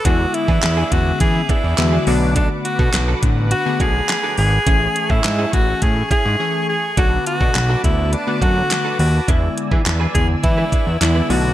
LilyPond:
<<
  \new Staff \with { instrumentName = "Supersaw synth" } { \time 4/4 \key e \mixolydian \tempo 4 = 104 << { d'''1~ | d'''1 | r1 | d'''1 |
r2. r8 d'''8 | } \\ { <gis' e''>2.~ <gis' e''>8 <b' fis''>8~ | <b' fis''>1 | a1 | b'1 |
d''2.~ d''8 <b' a''>8 | } >> }
  \new Staff \with { instrumentName = "Alto saxophone" } { \time 4/4 \key e \mixolydian fis'8 e'4 fis'8 gis'8 e'4 d'8 | d'8 fis'4 r8 fis'8 gis'4 gis'8~ | gis'8. e'8. fis'8 gis'8 gis'4 gis'8 | fis'8 fis'4 e'8 d'8 fis'4 fis'8 |
e'8 r4 gis'8 e'4 e'8 fis'8 | }
  \new Staff \with { instrumentName = "Clean electric guitar" } { \time 4/4 \key e \mixolydian <b d' gis'>16 r8 <b d' gis'>16 r16 <b d' gis'>16 r4 <b d' gis'>16 <b d' gis'>16 r16 <b d' gis'>16 r8 | <d' fis' a'>16 r8 <d' fis' a'>16 r16 <d' fis' a'>16 r4 <d' fis' a'>16 <d' fis' a'>16 r16 <d' fis' a'>16 r8 | <cis' e' gis'>16 r8 <cis' e' gis'>16 r16 <cis' e' gis'>16 r4 <cis' e' gis'>16 <cis' e' gis'>16 r4 | <d' fis' a'>16 r8 <d' fis' a'>16 r16 <d' fis' a'>16 r4 <d' fis' a'>16 <d' fis' a'>16 r16 <d' fis' a'>16 r8 |
<d' gis' b'>16 r8 <d' gis' b'>16 r16 <d' gis' b'>16 r8. <d' gis' b'>16 <d' gis' b'>16 r8 <d' gis' b'>16 r8 | }
  \new Staff \with { instrumentName = "Synth keys" } { \time 4/4 \key e \mixolydian <d gis b e'>4 r8 <d gis b cis'>4 r8 <d gis b fis'>8 <d a b fis'>8~ | <d a b fis'>4 r8 <d a b d'>8 r16 <d a b gis'>4 r8. | <e a cis' gis'>4 r8 <e a cis' gis'>4 r8 <e a cis' gis'>8 r8 | <d a b fis'>4 r8 <d a b fis'>8 r16 <d a b fis'>4 r8. |
<d gis b e'>4 r8 <d gis b e'>4 r8 <d gis b e'>8 <d a b fis'>8 | }
  \new Staff \with { instrumentName = "Analog synth bass" } { \clef bass \time 4/4 \key e \mixolydian e,8 r16 e16 e,8 e,8 e8 r16 e,16 e,8 b,,8~ | b,,8 r16 b,16 b,,8 a,,8. r16 b,,8 r8 gis,,8 | a,,8 r16 a,16 gis,8 a,,8 a,8 r16 gis,16 r4 | b,,8 r16 b,16 b,,8 d,8. r16 fis,8 r8 dis,8 |
e,8 r16 e16 e,8 e,8 e8 r16 e,16 e,8 b,,8 | }
  \new DrumStaff \with { instrumentName = "Drums" } \drummode { \time 4/4 <hh bd>8 hh16 bd16 <hc hh sn>8 <hh bd>8 <hh bd>8 <hh bd>8 <hc hh sn>8 hho8 | <hh bd>8 hh16 bd16 <hc hh sn>8 <hh bd>8 hh8 <hh bd>8 <hc hh sn>8 hho8 | <hh bd>8 hh16 bd16 <hc hh sn>8 <hh bd>8 <hh bd>8 <hh bd>8 r4 | <hh bd>8 hh16 bd16 <hc hh sn>8 <hh bd>8 hh8 <hh bd>8 <hc hh sn>8 hho8 |
<hh bd>8 hh16 bd16 <hc hh sn>8 <hh bd>8 <hh bd>8 <hh bd>8 <hc hh sn>8 hho8 | }
>>